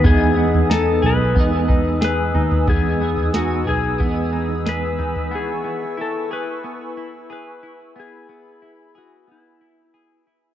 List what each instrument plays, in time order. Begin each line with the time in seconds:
Already playing: clean electric guitar D#4 G#4
0.04 tine electric piano E2, clean electric guitar E3 G#3 B3 D#4 G#4, electric slide guitar G#4, analog synth pad B4 G#5 D#6 E6, kick, floor tom
0.37 clean electric guitar B3
0.54 floor tom
0.70 clean electric guitar B3 D#4, electric slide guitar A4, snare
1.02 tine electric piano B1, clean electric guitar G#4, electric slide guitar B4, floor tom
1.35 tine electric piano E2, clean electric guitar G#3 B3 D#4, kick
1.40 clean electric guitar G#4
1.68 clean electric guitar D#4, kick
2.01 clean electric guitar G#4, electric slide guitar B4, snare
2.35 tine electric piano D#2, clean electric guitar D#4, floor tom
2.51 floor tom
2.67 tine electric piano E2, clean electric guitar E3 G#3 B3 D#4 G#4, electric slide guitar G#4, kick, floor tom
3.00 clean electric guitar B3 D#4 G#4
3.17 floor tom
3.33 clean electric guitar G#3 B3 D#4 G#4, electric slide guitar F#4, snare
3.66 tine electric piano B1, clean electric guitar G#4, electric slide guitar G#4, floor tom
3.98 tine electric piano E2, clean electric guitar E3 G#3 B3, kick
4.02 clean electric guitar D#4 G#4
4.33 clean electric guitar D#4
4.66 clean electric guitar G#4, electric slide guitar B4, snare
4.99 clean electric guitar D#4, floor tom
5.16 floor tom
5.31 clean electric guitar B3, analog synth pad E4 C#6
5.35 electric slide guitar G#4
5.64 clean electric guitar B3
5.97 clean electric guitar E4
6.01 electric slide guitar A4
6.31 clean electric guitar G#4, electric slide guitar B4
6.64 clean electric guitar B3
6.97 clean electric guitar E4
7.30 clean electric guitar G#4, electric slide guitar B4
7.63 clean electric guitar E4
7.96 clean electric guitar B3, electric slide guitar G#4, analog synth pad B5
8.29 clean electric guitar B3
8.62 clean electric guitar E4
8.95 electric slide guitar F#4, clean electric guitar G#4
9.27 clean electric guitar B3
9.31 electric slide guitar E4
9.61 clean electric guitar E4
9.94 clean electric guitar G#4
10.27 clean electric guitar E4